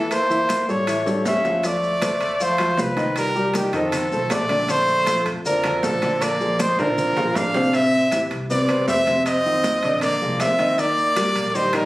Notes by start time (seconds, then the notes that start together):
Already playing: E2 E3 E4 A4 E5
0.11 A#3 C5, high conga, high timbale, maracas
0.30 E3 E4 E5, high conga, maracas
0.49 high conga, high timbale, low timbale, maracas
0.68 A1 G3 A3 G4 A4 C#5, high conga, maracas
0.87 E3 E4 E5, high conga, high timbale, maracas
1.05 G3 G4 A4, high conga, high timbale, maracas
1.25 D2 C#4 E5, high conga, low timbale, maracas
1.44 F3 F4 F5, high conga, low timbale, maracas
1.64 F3 A3 F4 D5 F5, high conga, high timbale, maracas
1.83 high conga, maracas
2.02 A3 A4 C5, high conga, high timbale, low timbale, maracas
2.21 D2, high conga, high timbale, maracas
2.40 F3 A3 F4 C5 F5, high conga, maracas
2.58 F3 F4 F5, high conga, high timbale, maracas
2.77 C2 F3 B4, high conga, low timbale, maracas
2.96 D#3 D#4 D#5, high conga, high timbale, maracas
3.16 G3 A#4, high conga, high timbale, maracas
3.36 G3 G4 A#4, high conga, maracas
3.54 D#3 G4, high conga, high timbale, low timbale, maracas
3.73 F2 D#3 F3 D#4 A4 D#5, high conga, high timbale, maracas
3.92 high conga, low conga, high timbale, maracas
4.11 B1 A3 A4 C5, high conga, maracas
4.30 A#1 A3 D5, high conga, high timbale, low timbale, maracas
4.49 D3 D4 D5, high conga, high timbale, maracas
4.68 D3 A3 D4 C5 D5, high conga, high timbale, maracas
4.88 high conga, maracas
5.07 F3 F4 A4, high conga, high timbale, low timbale, maracas
5.26 F2, high conga, high timbale, maracas
5.46 D3 F3 D4 A#4 D5, high conga, maracas
5.64 D3 D4 D5, high conga, high timbale, maracas
5.83 A#1 F3 A4, high conga, low timbale, maracas
6.02 D3 D4 D5, high conga, high timbale, maracas
6.22 A#3 D5, high conga, high timbale, maracas
6.40 F3 F4 G#4, high conga, maracas
6.59 G#3 C5, high conga, high timbale, low timbale, maracas
6.78 A#2 D3 F3 D4 A#4 D5, high conga, high timbale, maracas
6.98 high conga, low conga, maracas
7.17 A#2 F3 F4 G#4, high conga, low conga, low timbale, maracas
7.35 A2 D4 F5, high conga, low timbale, maracas
7.54 C3 C4 C5, low timbale, maracas
7.73 C3 C4 C5 E5, high conga, high timbale, maracas
7.93 high conga, maracas
8.12 E3 E4 G4, high conga, high timbale, low timbale, maracas
8.31 C2, high conga, high timbale, maracas
8.50 C3 B3 C4 C5 D5, high conga, maracas
8.69 C3 C4 C5, high conga, high timbale, maracas
8.88 F2 C4 E5, high conga, low timbale, maracas
9.07 C3 C4 C5, high conga, high timbale, maracas
9.26 C4 D#5, high conga, high timbale, maracas
9.45 D#3 D#4 F4, high conga, maracas
9.64 high conga, high timbale, low timbale, maracas
9.83 A#1 D3 D4 D5, high conga, high timbale, maracas
10.01 A#3 D5, high conga, low conga, high timbale, maracas
10.21 C2 F3 F4 G#4, high conga, maracas
10.40 D#2 C4 E5, high conga, high timbale, low timbale, maracas
10.59 D#3 D#4 D#5, high conga, high timbale, maracas
10.78 D#3 A#3 D#4 D5, high conga, high timbale, maracas
10.97 high conga, maracas
11.16 G3 G4 A#4, high conga, high timbale, low timbale, maracas
11.36 A#1, high conga, high timbale, maracas
11.55 D#3 G3 D#4 C5 D#5, high conga, maracas
11.73 D#3 G3 D#4 A#4 D#5, high conga, high timbale, maracas